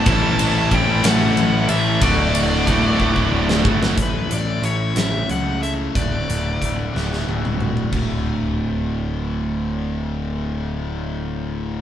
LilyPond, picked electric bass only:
\new Staff \with { instrumentName = "Picked electric bass" } { \clef bass \time 6/8 \key d \major \tempo 4. = 61 a,,4 a,,8 a,,8 a,,8 a,,8 | d,,4 d,,8 d,,8 d,,8 g,,8 | a,,8 a,,8 a,,8 a,,8 cis,4 | d,,8 d,,8 d,,8 d,,8 d,,4 |
d,,2.~ | d,,2. | }